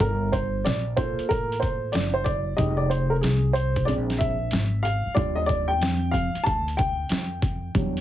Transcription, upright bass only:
0.00 0.62 G1 loud
0.65 1.16 A#1 loud
1.19 muted upright bass stroke medium
1.31 1.92 A1 loud
1.94 2.56 F#1 loud
2.59 3.20 F1 loud
3.23 3.84 C2 loud
3.87 4.49 A#1 loud
4.52 5.03 G#1 medium
5.06 muted upright bass stroke soft
5.17 5.81 D#2 loud
5.81 6.32 F2 loud
6.35 muted upright bass stroke medium
6.47 7.08 D2 loud
7.10 7.72 F2 medium
7.75 8.01 E2 loud

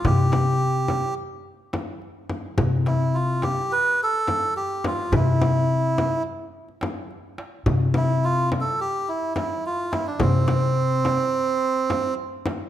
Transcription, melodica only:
0.06 1.14 G4 medium
2.87 3.16 E4 medium
3.14 3.44 F4 medium
3.43 3.72 G4 medium
3.72 4.01 B4 loud
4.03 4.54 A4 medium
4.56 4.85 G4 medium
4.87 5.15 F4 medium
5.15 6.23 E4 medium
7.96 8.25 E4 medium
8.24 8.50 F4 medium
8.61 8.80 A4 medium
8.80 9.09 G4 medium
9.09 9.33 E4 medium
9.35 9.64 E4 medium
9.66 9.94 F4 medium
9.91 10.06 E4 medium
10.07 10.21 D4 medium
10.21 12.14 C4 medium

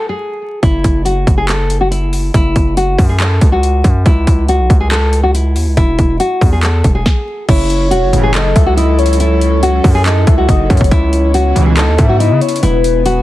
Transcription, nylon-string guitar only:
0.09 0.60 G#4 medium
0.63 1.03 E4 loud
1.05 1.36 F#4 medium
1.38 1.46 G#4 medium
1.49 1.79 A4 medium
1.81 1.89 F#4 medium
1.91 2.32 E4 medium
2.34 2.75 E4 loud
2.77 3.07 F#4 medium
3.09 3.17 G#4 medium
3.20 3.50 A4 medium
3.52 4.03 F#4 medium
4.06 4.46 E4 loud
4.49 4.79 F#4 medium
4.80 4.89 G#4 medium
4.91 5.22 A4 medium
5.23 5.32 F#4 medium
5.34 5.74 E4 medium
5.77 6.17 E4 loud
6.20 6.50 F#4 medium
6.52 6.60 G#4 medium
6.63 6.93 A4 medium
6.95 7.45 G#4 medium
7.49 7.89 E4 loud
7.91 8.21 F#4 medium
8.23 8.32 G#4 medium
8.35 8.65 A4 medium
8.66 8.75 F#4 medium
8.77 9.17 E4 medium
9.20 9.60 E4 loud
9.63 9.93 F#4 medium
9.95 10.03 G#4 medium
10.05 10.36 A4 medium
10.38 10.88 F#4 medium
10.92 11.32 E4 loud
11.34 11.65 F#4 loud
11.66 11.74 G#4 medium
11.77 12.07 A4 medium
12.09 12.17 F#4 medium
12.20 12.60 E4 medium
12.63 13.03 E4 loud
13.06 13.22 F#4 medium

